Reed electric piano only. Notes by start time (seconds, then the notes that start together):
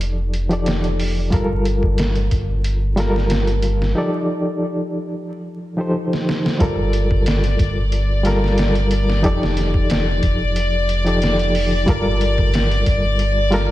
Already playing: F3 D#4 G4 A4 D5
0.49 F3 D#4 G4 A4 D5
1.30 G3 F4 A4 A#4
2.96 G3 F4 A4
3.00 A#4
3.95 F3 D#4 G4 A4 D5
5.77 F3 D#4 G4 A4 C5
6.58 G3 F4 A4 A#4
8.23 G3 F4 A4 A#4
9.22 F3 D#4 G4 A4 D5
11.04 F3 D#4 G4 A4 D5
11.86 G3 F4 A4 A#4
13.50 G3 F4 A4 A#4